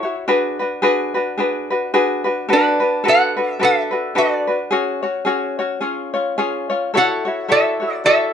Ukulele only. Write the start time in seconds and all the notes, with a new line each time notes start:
0.03 E4 F#4 C#5
0.28 D4 F#4 G#4 B4
0.59 D4 F#4 B4
0.82 D4 F#4 G#4 B4
1.14 D4 F#4 B4
1.38 D4 F#4 G#4 B4
1.70 D4 F#4 B4
1.94 D4 F#4 G#4 B4
2.24 D4 F#4 B4
2.49 D4 F#4 A4 B4
2.80 D4 F#4 B4
3.04 D4 F#4 A4 B4
3.37 D4 F#4 B4
3.59 D4 F#4 A4 B4
3.91 D4 F#4 B4
4.15 D4 F#4 A4 B4
4.47 D4 F#4 B4
4.71 C#4 F#4 G#4 C#5
5.03 C#4 F#4 C#5
5.25 C#4 F#4 G#4 C#5
5.59 C#4 F#4 C#5
5.81 C#4 F4 G#4 C#5
6.14 C#4 F4 C#5
6.38 C#4 F4 G#4 C#5
6.70 C#4 F4 C#5
6.94 E4 F#4 A4 C#5
7.25 E4 F#4 C#5
7.48 E4 F#4 A4 C#5
7.80 E4 F#4 C#5
8.05 E4 F#4 A4 C#5